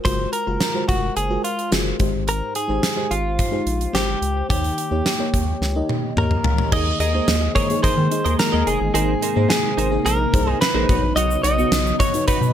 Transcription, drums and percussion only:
0.05 kick loud
0.05 closed hi-hat medium
0.33 closed hi-hat medium
0.61 snare medium
0.61 closed hi-hat medium
0.89 kick medium
0.89 closed hi-hat medium
1.17 closed hi-hat medium
1.45 closed hi-hat medium
1.59 closed hi-hat soft
1.72 snare loud
1.72 closed hi-hat medium
2.00 kick medium
2.00 closed hi-hat medium
2.28 closed hi-hat medium
2.55 closed hi-hat medium
2.83 snare medium
2.83 closed hi-hat medium
3.11 closed hi-hat medium
3.39 kick medium
3.39 closed hi-hat medium
3.67 closed hi-hat medium
3.81 closed hi-hat soft
3.95 snare loud
3.95 closed hi-hat medium
4.22 closed hi-hat medium
4.50 kick loud
4.50 closed hi-hat medium
4.64 closed hi-hat medium
4.78 closed hi-hat medium
5.06 snare loud
5.06 closed hi-hat medium
5.34 kick medium
5.34 closed hi-hat medium
5.62 snare soft
5.89 high tom medium
6.17 mid tom medium
6.31 mid tom medium
6.44 floor tom medium
6.58 floor tom medium
6.72 kick loud
6.72 crash medium
7.00 closed hi-hat medium
7.28 snare loud
7.28 closed hi-hat medium
7.56 kick medium
7.56 closed hi-hat medium
7.70 closed hi-hat soft
7.84 kick medium
7.84 closed hi-hat medium
8.12 closed hi-hat medium
8.26 closed hi-hat soft
8.39 snare loud
8.39 closed hi-hat medium
8.67 closed hi-hat medium
8.95 closed hi-hat medium
9.22 closed hi-hat medium
9.50 snare loud
9.50 closed hi-hat medium
9.78 closed hi-hat medium
10.06 closed hi-hat medium
10.34 kick medium
10.34 closed hi-hat medium
10.61 snare loud
10.61 closed hi-hat medium
10.89 kick loud
10.89 closed hi-hat medium
11.16 closed hi-hat medium
11.16 shaker medium
11.31 shaker medium
11.44 closed hi-hat medium
11.44 shaker soft
11.59 shaker soft
11.72 snare loud
11.72 closed hi-hat medium
11.72 shaker medium
11.86 shaker soft
12.00 kick medium
12.00 closed hi-hat medium
12.00 shaker soft
12.14 closed hi-hat soft
12.14 shaker soft
12.28 kick medium
12.28 closed hi-hat medium
12.28 shaker medium
12.43 shaker soft

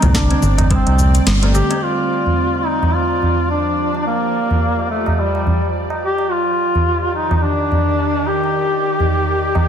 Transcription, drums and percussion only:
0.02 closed hi-hat soft
0.02 low conga medium
0.02 tabla ge medium
0.02 cabasa soft
0.14 kick loud
0.14 snare loud
0.14 closed hi-hat medium
0.30 closed hi-hat soft
0.30 tabla tin medium
0.43 low conga medium
0.43 cabasa medium
0.58 closed hi-hat soft
0.58 tabla na medium
0.58 tabla ge loud
0.58 cabasa soft
0.71 kick loud
0.71 closed hi-hat medium
0.71 cabasa soft
0.86 closed hi-hat soft
0.86 tabla na medium
0.98 tabla tin medium
0.98 tabla ge medium
0.98 cabasa medium
1.15 closed hi-hat soft
1.15 tabla na soft
1.15 cabasa soft
1.27 snare loud
1.27 closed hi-hat medium
1.27 cabasa soft
1.42 closed hi-hat soft
1.42 tabla na medium
1.55 cabasa medium
1.70 closed hi-hat soft
1.70 tabla na medium
1.70 tabla tin soft
1.70 cabasa soft
2.11 tabla tin soft
2.26 tabla ge medium
2.54 tabla tin soft
2.83 tabla na medium
2.83 tabla ge medium
3.22 tabla na soft
3.22 tabla ge medium
3.51 tabla tin medium
3.95 tabla na soft
4.35 tabla tin soft
4.51 tabla ge medium
4.79 tabla tin soft
5.06 tabla na medium
5.06 tabla ge medium
5.35 tabla na medium
5.47 tabla tin soft
5.47 tabla ge medium
5.62 tabla na soft
5.90 tabla na medium
6.18 tabla na medium
6.18 tabla tin soft
6.59 tabla tin soft
6.75 tabla ge medium
7.03 tabla tin soft
7.31 tabla na medium
7.31 tabla ge medium
7.71 tabla na soft
7.71 tabla ge medium
7.99 tabla tin medium
8.44 tabla na medium
8.84 tabla tin soft
9.00 tabla ge medium
9.28 tabla tin soft
9.55 tabla na medium
9.55 tabla ge medium

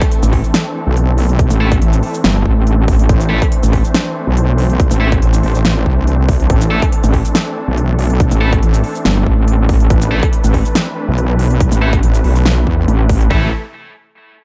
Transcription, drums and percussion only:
0.02 kick loud
0.02 closed hi-hat medium
0.12 closed hi-hat medium
0.23 shaker medium
0.33 kick medium
0.33 open hi-hat medium
0.44 shaker soft
0.54 snare loud
0.54 closed hi-hat medium
0.97 closed hi-hat medium
1.18 open hi-hat loud
1.29 closed hi-hat medium
1.39 kick loud
1.39 closed hi-hat medium
1.50 shaker medium
1.72 kick loud
1.72 closed hi-hat medium
1.82 closed hi-hat medium
1.93 shaker medium
2.03 open hi-hat medium
2.14 shaker medium
2.24 snare loud
2.24 closed hi-hat medium
2.46 kick medium
2.67 closed hi-hat medium
2.88 kick loud
2.88 open hi-hat medium
2.99 closed hi-hat medium
3.09 kick loud
3.09 closed hi-hat medium
3.21 shaker medium
3.42 kick loud
3.42 closed hi-hat medium
3.52 closed hi-hat medium
3.63 shaker medium
3.73 kick medium
3.73 open hi-hat medium
3.85 shaker medium
3.94 snare loud
3.94 closed hi-hat medium
4.37 closed hi-hat medium
4.58 open hi-hat medium
4.70 closed hi-hat medium
4.80 kick loud
4.80 closed hi-hat medium
4.91 shaker medium
5.12 kick loud
5.12 closed hi-hat medium
5.22 closed hi-hat medium
5.33 shaker medium
5.43 open hi-hat medium
5.55 shaker medium
5.65 snare loud
5.65 closed hi-hat medium
5.86 kick medium
6.07 closed hi-hat medium
6.29 kick loud
6.29 open hi-hat medium
6.40 closed hi-hat medium
6.50 kick loud
6.50 closed hi-hat medium
6.61 shaker medium
6.82 kick loud
6.82 closed hi-hat soft
6.92 closed hi-hat medium
7.04 shaker medium
7.14 kick medium
7.14 open hi-hat medium
7.25 shaker medium
7.35 snare loud
7.35 closed hi-hat medium
7.77 closed hi-hat medium
7.99 open hi-hat medium
8.10 closed hi-hat medium
8.20 kick loud
8.20 closed hi-hat medium
8.31 shaker medium
8.53 kick loud
8.53 closed hi-hat soft
8.63 closed hi-hat medium
8.74 shaker medium
8.84 open hi-hat medium
8.95 shaker medium
9.05 snare loud
9.05 closed hi-hat medium
9.26 kick medium
9.48 closed hi-hat medium
9.69 kick loud
9.69 open hi-hat medium
9.80 closed hi-hat medium
9.90 kick loud
9.90 closed hi-hat medium
10.02 shaker medium
10.23 kick loud
10.23 closed hi-hat soft
10.33 closed hi-hat medium
10.44 shaker medium
10.54 kick medium
10.54 open hi-hat medium
10.65 shaker medium
10.75 snare loud
10.75 closed hi-hat medium
11.18 closed hi-hat medium
11.39 open hi-hat loud
11.50 closed hi-hat medium
11.60 kick loud
11.60 closed hi-hat medium
11.72 shaker medium
11.93 kick loud
11.93 closed hi-hat medium
12.03 closed hi-hat medium
12.14 shaker medium
12.24 open hi-hat medium
12.36 shaker medium
12.46 snare loud
12.46 closed hi-hat medium
12.67 kick medium
12.88 closed hi-hat medium
13.09 kick loud
13.09 open hi-hat medium
13.21 closed hi-hat medium
13.31 kick loud

